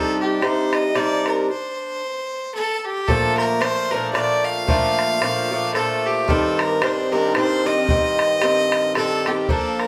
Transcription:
0.00 0.40 C3 medium
0.00 0.42 G3 medium
0.00 0.44 D4 medium
0.00 0.43 D#4 medium
0.00 0.20 A4 medium
0.21 0.44 G4 medium
0.41 0.94 C3 soft
0.41 0.95 G3 medium
0.41 0.97 D4 medium
0.41 0.97 D#4 medium
0.41 0.75 C5 medium
0.41 bodhran medium
0.73 0.98 D#5 medium
0.73 bodhran medium
0.95 1.48 C3 medium
0.95 1.49 G3 medium
0.95 2.00 D4 medium
0.95 1.50 D#4 medium
0.95 1.29 D5 medium
0.95 bodhran soft
1.26 1.50 A#4 medium
1.26 bodhran soft
1.50 2.52 C5 medium
2.54 2.77 A4 medium
2.77 2.86 A4 medium
2.85 3.09 G4 medium
3.08 3.60 A#2 medium
3.08 3.61 F3 medium
3.08 3.62 A3 medium
3.08 3.64 D4 medium
3.08 3.37 A4 loud
3.08 bodhran medium
3.37 3.63 A#4 medium
3.37 bodhran medium
3.61 3.91 A#2 medium
3.61 3.92 F3 medium
3.61 3.93 A3 soft
3.61 3.94 D4 medium
3.61 3.93 C5 loud
3.61 bodhran medium
3.91 4.12 A#2 medium
3.91 4.13 F3 medium
3.91 4.15 A3 medium
3.91 4.16 D4 medium
3.91 4.13 A#4 medium
4.13 4.66 A#2 medium
4.13 4.67 F3 medium
4.13 4.68 A3 medium
4.13 4.69 D4 medium
4.13 4.46 D5 medium
4.13 bodhran medium
4.45 5.74 F5 medium
4.68 5.20 A#2 medium
4.68 5.21 F3 medium
4.68 5.22 A3 medium
4.68 5.24 D4 medium
4.68 bodhran medium
4.99 bodhran soft
5.21 5.50 A#2 medium
5.21 5.51 F3 medium
5.21 5.52 A3 medium
5.21 5.53 D4 medium
5.21 bodhran medium
5.51 5.72 A#2 medium
5.51 5.74 F3 medium
5.51 5.75 A3 medium
5.51 5.76 D4 medium
5.74 6.27 A#2 medium
5.74 6.28 F3 medium
5.74 6.29 A3 medium
5.74 6.30 D4 medium
5.74 6.08 A4 medium
5.74 bodhran medium
6.07 6.31 G4 medium
6.28 6.80 G2 medium
6.28 6.82 D#3 medium
6.28 6.82 C4 medium
6.28 6.84 D4 medium
6.28 6.61 A4 medium
6.28 bodhran medium
6.59 6.84 A#4 medium
6.59 bodhran medium
6.82 7.11 G2 medium
6.82 7.12 D#3 medium
6.82 7.13 C4 medium
6.82 7.14 D4 medium
6.82 7.14 C5 medium
6.82 bodhran medium
7.12 7.33 G2 medium
7.12 7.35 D#3 medium
7.12 7.35 C4 medium
7.12 7.36 D4 medium
7.12 7.35 A#4 medium
7.34 7.63 G2 medium
7.34 7.65 D#3 medium
7.34 7.65 C4 medium
7.34 7.67 D4 medium
7.34 7.68 C5 loud
7.34 bodhran medium
7.64 7.87 G2 soft
7.64 7.88 D#3 medium
7.64 7.89 C4 medium
7.64 7.90 D4 soft
7.64 8.95 D#5 medium
7.88 8.40 G2 medium
7.88 8.41 D#3 medium
7.88 8.42 C4 medium
7.88 bodhran medium
8.19 bodhran medium
8.41 8.93 G2 medium
8.41 8.95 D#3 medium
8.41 8.95 C4 medium
8.41 bodhran medium
8.72 bodhran medium
8.95 9.24 G2 soft
8.95 9.25 D#3 medium
8.95 9.26 C4 medium
8.95 9.27 D4 medium
8.95 9.29 A4 loud
8.95 bodhran medium
9.25 9.49 G2 soft
9.25 9.49 D#3 soft
9.25 9.49 C4 soft
9.25 9.49 D4 soft
9.25 9.51 G4 medium
9.25 bodhran soft
9.49 9.87 F3 medium
9.49 9.87 A#3 medium
9.49 9.87 D4 medium
9.49 9.81 A4 medium
9.49 bodhran medium
9.80 9.87 A#4 medium
9.80 bodhran soft

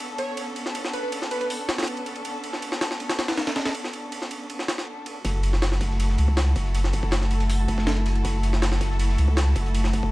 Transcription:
0.00 5.21 B3 medium
0.00 5.21 C#4 medium
0.00 5.21 D4 medium
0.00 5.21 A4 medium
0.18 0.41 C#5 medium
0.18 ride medium
0.37 ride medium
0.56 ride medium
0.66 snare soft
0.75 ride medium
0.85 snare soft
0.93 1.00 B4 medium
0.93 ride medium
1.03 1.09 B4 medium
1.12 ride medium
1.22 snare soft
1.31 1.37 B4 medium
1.31 ride medium
1.41 1.46 B4 medium
1.41 ride soft
1.50 open hi-hat medium
1.69 snare loud
1.69 ride medium
1.78 snare medium
1.78 ride medium
1.83 snare medium
1.83 ride medium
1.87 ride medium
1.97 ride soft
2.06 ride medium
2.16 ride soft
2.25 ride medium
2.44 ride medium
2.53 snare soft
2.62 ride medium
2.72 snare medium
2.81 snare loud
2.81 ride medium
2.91 snare soft
3.00 ride medium
3.09 snare loud
3.09 ride medium
3.19 snare loud
3.19 ride medium
3.28 snare loud
3.28 ride medium
3.37 snare loud
3.37 ride medium
3.47 snare loud
3.47 ride medium
3.56 snare loud
3.56 ride medium
3.65 snare loud
3.65 ride medium
3.75 ride medium
3.84 snare soft
3.93 ride medium
4.12 ride medium
4.22 snare soft
4.31 ride medium
4.50 ride medium
4.59 snare soft
4.68 snare medium
4.68 ride medium
4.78 snare soft
5.06 ride medium
5.25 6.17 F#1 loud
5.25 10.12 A3 medium
5.25 10.12 E4 medium
5.25 10.12 F#4 medium
5.25 10.12 A4 medium
5.25 10.12 A5 medium
5.25 kick loud
5.25 closed hi-hat medium
5.25 ride medium
5.43 closed hi-hat medium
5.43 ride medium
5.53 snare soft
5.62 snare loud
5.62 closed hi-hat medium
5.62 ride medium
5.72 snare medium
5.80 kick medium
5.80 snare soft
5.80 closed hi-hat medium
5.80 ride medium
5.91 snare soft
6.00 closed hi-hat medium
6.00 ride medium
6.09 snare medium
6.18 6.55 C#2 medium
6.18 closed hi-hat medium
6.18 ride medium
6.28 kick loud
6.37 snare loud
6.37 closed hi-hat medium
6.37 ride medium
6.56 7.02 F#1 medium
6.56 kick medium
6.56 closed hi-hat medium
6.56 ride medium
6.66 closed hi-hat soft
6.74 closed hi-hat medium
6.74 ride medium
6.84 snare soft
6.93 kick medium
6.93 closed hi-hat medium
6.93 ride medium
7.03 7.67 F#1 medium
7.03 kick loud
7.11 snare loud
7.11 closed hi-hat medium
7.11 ride medium
7.22 snare soft
7.22 closed hi-hat soft
7.31 closed hi-hat medium
7.31 ride medium
7.40 snare medium
7.40 ride soft
7.50 closed hi-hat medium
7.50 open hi-hat medium
7.68 8.23 F#1 medium
7.68 kick medium
7.68 closed hi-hat medium
7.68 ride medium
7.78 kick medium
7.78 snare loud
7.87 snare loud
7.87 closed hi-hat medium
7.87 ride medium
7.97 ride soft
8.06 closed hi-hat medium
8.06 ride medium
8.15 ride soft
8.25 9.17 F#1 loud
8.25 kick loud
8.25 closed hi-hat medium
8.25 ride medium
8.43 closed hi-hat medium
8.43 ride medium
8.53 snare soft
8.62 snare loud
8.62 closed hi-hat medium
8.62 ride medium
8.72 snare medium
8.81 kick loud
8.81 snare medium
8.81 closed hi-hat medium
8.81 ride medium
8.91 snare soft
8.99 closed hi-hat medium
8.99 ride medium
9.09 snare medium
9.18 9.55 C#2 medium
9.18 closed hi-hat medium
9.18 ride medium
9.28 kick medium
9.37 snare loud
9.37 closed hi-hat medium
9.37 ride medium
9.56 10.02 F#1 medium
9.56 kick loud
9.56 closed hi-hat medium
9.56 ride medium
9.66 closed hi-hat soft
9.75 closed hi-hat medium
9.75 ride medium
9.84 snare soft
9.93 kick loud
9.93 closed hi-hat medium
9.93 ride medium
10.03 10.12 F#1 medium
10.03 kick medium

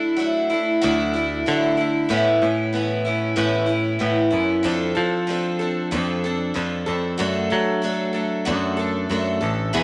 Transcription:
0.00 0.17 A3 soft
0.00 0.18 D4 soft
0.00 0.19 E4 medium
0.16 0.50 F#3 medium
0.16 0.51 A3 medium
0.16 0.50 D4 medium
0.16 0.48 E4 medium
0.50 0.81 A3 soft
0.50 0.82 D4 soft
0.50 0.82 E4 medium
0.81 1.43 D2 medium
0.81 1.14 D3 medium
0.81 1.14 F#3 medium
0.81 1.14 A3 medium
0.81 1.14 D4 medium
0.81 1.12 E4 medium
1.13 1.46 A3 soft
1.13 1.47 D4 medium
1.13 1.46 E4 medium
1.46 2.07 D3 medium
1.46 1.78 F#3 medium
1.46 1.79 A3 medium
1.46 1.77 D4 medium
1.46 1.76 E4 medium
1.77 2.10 A3 soft
1.77 2.10 D4 soft
1.77 2.10 E4 medium
2.09 2.41 A2 medium
2.09 2.39 A2 medium
2.09 2.42 E3 medium
2.09 2.42 B3 medium
2.09 2.42 C#4 medium
2.09 2.40 E4 medium
2.42 3.34 A2 medium
2.42 2.72 B3 soft
2.42 2.74 C#4 soft
2.42 2.74 E4 medium
2.73 3.05 E3 medium
2.73 3.05 B3 medium
2.73 3.05 C#4 medium
2.73 3.04 E4 medium
3.05 3.35 B3 soft
3.05 3.36 C#4 soft
3.05 3.37 E4 medium
3.36 3.68 A2 medium
3.36 3.97 A2 medium
3.36 3.69 E3 medium
3.36 3.68 B3 medium
3.36 3.66 C#4 medium
3.36 3.65 E4 medium
3.66 3.99 B3 soft
3.66 3.99 C#4 soft
3.66 3.99 E4 soft
3.99 4.30 A2 medium
3.99 4.32 E3 medium
3.99 4.32 B3 medium
3.99 4.31 C#4 medium
3.99 4.29 E4 medium
4.31 4.62 F#2 medium
4.31 4.64 B3 soft
4.31 4.64 C#4 soft
4.31 4.64 E4 medium
4.63 4.94 F2 medium
4.63 4.96 F3 medium
4.63 4.96 C4 medium
4.63 4.95 D4 medium
4.63 4.94 A4 medium
4.95 5.94 F3 medium
4.95 5.27 C4 soft
4.95 5.28 D4 soft
4.95 5.28 A4 medium
5.27 5.59 F3 medium
5.27 5.60 C4 medium
5.27 5.60 D4 medium
5.27 5.58 A4 medium
5.59 5.91 C4 soft
5.59 5.91 D4 medium
5.59 5.91 A4 medium
5.91 6.52 F2 medium
5.91 6.23 F3 medium
5.91 6.24 C4 medium
5.91 6.24 D4 medium
5.91 6.23 A4 medium
6.24 6.54 C4 soft
6.24 6.55 D4 soft
6.24 6.56 A4 medium
6.54 6.84 F2 medium
6.54 6.87 F3 medium
6.54 6.87 C4 medium
6.54 6.86 D4 medium
6.54 6.85 A4 medium
6.86 7.16 F2 medium
6.86 7.18 C4 soft
6.86 7.18 D4 medium
6.86 7.18 A4 medium
7.18 7.48 F#2 medium
7.18 7.50 F#3 medium
7.18 7.51 A3 medium
7.18 7.50 D4 medium
7.18 7.49 A4 medium
7.50 8.49 F#3 medium
7.50 7.82 A3 soft
7.50 7.83 D4 soft
7.50 7.82 A4 medium
7.82 8.14 F#3 medium
7.82 8.15 A3 medium
7.82 8.13 D4 medium
7.82 8.12 A4 medium
8.13 8.45 A3 soft
8.13 8.45 D4 soft
8.13 8.45 A4 medium
8.45 9.06 F#2 medium
8.45 8.77 F#3 medium
8.45 8.78 A3 medium
8.45 8.78 D4 medium
8.45 8.76 A4 medium
8.77 9.09 A3 soft
8.77 9.10 D4 medium
8.77 9.09 A4 medium
9.09 9.39 F#2 medium
9.09 9.41 F#3 medium
9.09 9.42 A3 medium
9.09 9.41 D4 medium
9.09 9.39 A4 medium
9.41 9.71 A1 medium
9.41 9.73 A3 soft
9.41 9.74 D4 soft
9.41 9.73 A4 medium
9.73 9.83 E2 medium
9.73 9.83 B2 medium
9.73 9.83 E3 medium
9.73 9.83 B3 medium
9.73 9.83 E4 medium
9.73 9.83 G#4 medium

